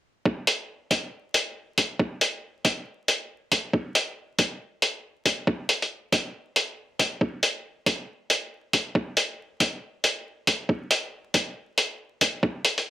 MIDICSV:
0, 0, Header, 1, 2, 480
1, 0, Start_track
1, 0, Tempo, 434783
1, 283, Time_signature, 4, 2, 24, 8
1, 14242, End_track
2, 0, Start_track
2, 0, Title_t, "Drums"
2, 282, Note_on_c, 9, 36, 113
2, 392, Note_off_c, 9, 36, 0
2, 521, Note_on_c, 9, 42, 78
2, 632, Note_off_c, 9, 42, 0
2, 1002, Note_on_c, 9, 36, 104
2, 1002, Note_on_c, 9, 42, 78
2, 1112, Note_off_c, 9, 36, 0
2, 1112, Note_off_c, 9, 42, 0
2, 1482, Note_on_c, 9, 42, 84
2, 1592, Note_off_c, 9, 42, 0
2, 1962, Note_on_c, 9, 42, 81
2, 1963, Note_on_c, 9, 36, 57
2, 2072, Note_off_c, 9, 42, 0
2, 2073, Note_off_c, 9, 36, 0
2, 2203, Note_on_c, 9, 36, 117
2, 2313, Note_off_c, 9, 36, 0
2, 2442, Note_on_c, 9, 42, 74
2, 2553, Note_off_c, 9, 42, 0
2, 2922, Note_on_c, 9, 42, 76
2, 2923, Note_on_c, 9, 36, 103
2, 3033, Note_off_c, 9, 36, 0
2, 3033, Note_off_c, 9, 42, 0
2, 3402, Note_on_c, 9, 42, 79
2, 3513, Note_off_c, 9, 42, 0
2, 3882, Note_on_c, 9, 42, 80
2, 3883, Note_on_c, 9, 36, 61
2, 3993, Note_off_c, 9, 36, 0
2, 3993, Note_off_c, 9, 42, 0
2, 4123, Note_on_c, 9, 36, 125
2, 4233, Note_off_c, 9, 36, 0
2, 4362, Note_on_c, 9, 42, 74
2, 4473, Note_off_c, 9, 42, 0
2, 4842, Note_on_c, 9, 42, 75
2, 4843, Note_on_c, 9, 36, 103
2, 4952, Note_off_c, 9, 42, 0
2, 4953, Note_off_c, 9, 36, 0
2, 5323, Note_on_c, 9, 42, 75
2, 5433, Note_off_c, 9, 42, 0
2, 5802, Note_on_c, 9, 36, 63
2, 5803, Note_on_c, 9, 42, 75
2, 5913, Note_off_c, 9, 36, 0
2, 5913, Note_off_c, 9, 42, 0
2, 6042, Note_on_c, 9, 36, 121
2, 6152, Note_off_c, 9, 36, 0
2, 6282, Note_on_c, 9, 42, 70
2, 6393, Note_off_c, 9, 42, 0
2, 6429, Note_on_c, 9, 42, 33
2, 6540, Note_off_c, 9, 42, 0
2, 6762, Note_on_c, 9, 36, 107
2, 6762, Note_on_c, 9, 42, 72
2, 6872, Note_off_c, 9, 36, 0
2, 6872, Note_off_c, 9, 42, 0
2, 7242, Note_on_c, 9, 42, 74
2, 7352, Note_off_c, 9, 42, 0
2, 7721, Note_on_c, 9, 36, 59
2, 7722, Note_on_c, 9, 42, 76
2, 7832, Note_off_c, 9, 36, 0
2, 7832, Note_off_c, 9, 42, 0
2, 7961, Note_on_c, 9, 36, 118
2, 8072, Note_off_c, 9, 36, 0
2, 8201, Note_on_c, 9, 42, 71
2, 8312, Note_off_c, 9, 42, 0
2, 8682, Note_on_c, 9, 36, 102
2, 8682, Note_on_c, 9, 42, 74
2, 8792, Note_off_c, 9, 36, 0
2, 8792, Note_off_c, 9, 42, 0
2, 9162, Note_on_c, 9, 42, 74
2, 9273, Note_off_c, 9, 42, 0
2, 9642, Note_on_c, 9, 42, 73
2, 9643, Note_on_c, 9, 36, 59
2, 9752, Note_off_c, 9, 42, 0
2, 9753, Note_off_c, 9, 36, 0
2, 9882, Note_on_c, 9, 36, 111
2, 9993, Note_off_c, 9, 36, 0
2, 10122, Note_on_c, 9, 42, 77
2, 10233, Note_off_c, 9, 42, 0
2, 10602, Note_on_c, 9, 42, 73
2, 10603, Note_on_c, 9, 36, 96
2, 10712, Note_off_c, 9, 42, 0
2, 10713, Note_off_c, 9, 36, 0
2, 11082, Note_on_c, 9, 42, 78
2, 11193, Note_off_c, 9, 42, 0
2, 11562, Note_on_c, 9, 42, 77
2, 11563, Note_on_c, 9, 36, 58
2, 11672, Note_off_c, 9, 42, 0
2, 11673, Note_off_c, 9, 36, 0
2, 11803, Note_on_c, 9, 36, 112
2, 11913, Note_off_c, 9, 36, 0
2, 12041, Note_on_c, 9, 42, 79
2, 12152, Note_off_c, 9, 42, 0
2, 12521, Note_on_c, 9, 42, 79
2, 12522, Note_on_c, 9, 36, 95
2, 12631, Note_off_c, 9, 42, 0
2, 12633, Note_off_c, 9, 36, 0
2, 13001, Note_on_c, 9, 42, 78
2, 13111, Note_off_c, 9, 42, 0
2, 13481, Note_on_c, 9, 42, 82
2, 13482, Note_on_c, 9, 36, 57
2, 13591, Note_off_c, 9, 42, 0
2, 13592, Note_off_c, 9, 36, 0
2, 13722, Note_on_c, 9, 36, 110
2, 13832, Note_off_c, 9, 36, 0
2, 13961, Note_on_c, 9, 42, 79
2, 14072, Note_off_c, 9, 42, 0
2, 14108, Note_on_c, 9, 42, 37
2, 14218, Note_off_c, 9, 42, 0
2, 14242, End_track
0, 0, End_of_file